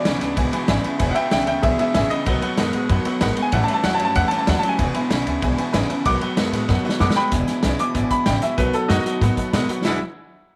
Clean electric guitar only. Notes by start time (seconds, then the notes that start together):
0.05 E2 C#3
0.21 E2 C#3
0.37 E2 B2
0.53 E2 B2
0.69 E2 C#3
0.85 E2 C#3
1.00 E2 B2
1.16 E2 B2
1.33 E2 C#3
1.48 E2 C#3
1.64 E2 B2
1.80 E2 B2
1.95 E2 C#3
2.11 E2 C#3
2.27 B2 F#3
2.43 B2 F#3
2.58 B2 G#3
2.74 B2 G#3
2.90 B2 F#3
3.06 B2 F#3
3.21 B2 G#3
3.37 B2 G#3
3.52 A2 E3
3.69 A2 E3
3.84 A2 F#3
4.01 A2 F#3
4.16 A2 E3
4.33 A2 E3
4.48 A2 F#3
4.63 A2 F#3
4.79 E2 B2
4.95 E2 B2
5.11 E2 C#3
5.27 E2 C#3
5.43 E2 B2
5.59 E2 B2
5.74 E2 C#3
5.91 E2 C#3
6.07 B2 F#3
6.22 B2 F#3
6.38 B2 G#3
6.54 B2 G#3
6.70 B2 F#3
6.85 B2 F#3
7.01 B2 G#3
7.17 B2 G#3
7.32 E2 B2
7.64 E2 C#3
7.79 E2 B2
7.96 E2 B2
8.27 E2 C#3
8.42 E2 B2
8.58 B2 F#3
8.90 B2 G#3
9.05 B2 F#3
9.22 B2 F#3
9.53 B2 G#3
9.70 B2 F#3
9.85 E3 G#3 D4 F#4